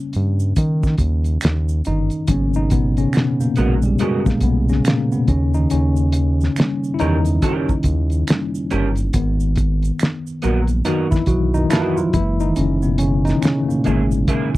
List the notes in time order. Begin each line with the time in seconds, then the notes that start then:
Already playing: C#3 G3 A#3 C#4
0.13 G2, closed hi-hat, shaker
0.40 shaker
0.56 D#3, kick, closed hi-hat, shaker
0.83 kick, snare, shaker
0.98 D#2, kick, closed hi-hat, shaker
1.24 closed hi-hat, shaker
1.41 D#2, finger snap, snare, closed hi-hat, shaker
1.69 shaker
1.85 G1 D#3 D#4, closed hi-hat, shaker
2.10 closed hi-hat, shaker
2.27 G#1 C#3 F#3 A#3 B3 C#4, kick, closed hi-hat, shaker
2.54 D#3 D#4, shaker
2.70 B2 B3, kick, closed hi-hat, shaker
2.97 C#3 C#4, closed hi-hat, shaker
3.13 B2 B3, finger snap, snare, closed hi-hat, shaker
3.40 A#2 A#3, shaker
3.56 A#1 G#3 B3 F#4 G#4 A#4, closed hi-hat, shaker
3.82 G3 G4, shaker
3.99 G#3 B3 F#4 G#4 A#4, closed hi-hat, shaker
4.26 B1 A#2 A#3, kick, snare, shaker
4.41 B1 B3, kick, closed hi-hat, shaker
4.45 B2
4.69 C#3 C#4, snare, shaker
4.85 A#2 A#3, finger snap, snare, closed hi-hat, shaker
5.12 B2 B3, shaker
5.28 D#2 C#3 C#4, kick, closed hi-hat, shaker
5.54 D#3 D#4, shaker
5.70 D#2 C#3 C#4, closed hi-hat, shaker
5.96 shaker
6.12 closed hi-hat, shaker
6.41 snare, shaker
6.56 G3 A#3 C#4, finger snap, snare, closed hi-hat, shaker
6.84 shaker
6.94 E4
6.99 E2 D#3 C#4 D#4 G4 A#4, closed hi-hat, shaker
7.25 closed hi-hat, shaker
7.42 C#4 G4 A#4, kick, closed hi-hat, shaker
7.69 D#2, kick, shaker
7.83 D#2, kick, closed hi-hat, shaker
8.10 closed hi-hat, shaker
8.27 G3 A#3 C#4, finger snap, snare, closed hi-hat, shaker
8.55 shaker
8.70 G1 C#4 G4 A#4, closed hi-hat, shaker
8.96 closed hi-hat, shaker
9.13 G#1 D#3 B3, kick, closed hi-hat, shaker
9.40 shaker
9.56 kick, closed hi-hat, shaker
9.83 closed hi-hat, shaker
10.00 finger snap, snare, closed hi-hat, shaker
10.27 shaker
10.42 A#1 F#3 A#3 B3 F#4 A#4, closed hi-hat, shaker
10.67 closed hi-hat, shaker
10.85 D#3 B3 D#4 F#4 A#4, closed hi-hat, shaker
11.11 B1 E3 E4, kick, snare, shaker
11.26 B1 F#4, kick, closed hi-hat, shaker
11.31 F#3
11.54 D#3 D#4, shaker
11.70 E3 B3 E4 F#4 A#4, finger snap, snare, closed hi-hat, shaker
11.97 F3 F4, shaker
12.13 F#1 E3 G#3 A#3 E4, kick, closed hi-hat, shaker
12.40 D#4, shaker
12.44 D#3
12.56 F#1 C#4, closed hi-hat, shaker
12.60 C#3
12.82 B2 B3, shaker
12.98 C#4, closed hi-hat, shaker
13.03 C#3
13.25 D#3 D#4, snare, closed hi-hat, shaker
13.42 C#3 C#4, finger snap, snare, closed hi-hat, shaker
13.63 A3
13.68 A#2 A#3, shaker
13.84 G#1 G#3 A#3 E4 G#4, closed hi-hat, shaker
14.11 shaker
14.28 A#3 E4 G#4, kick, closed hi-hat, shaker
14.55 kick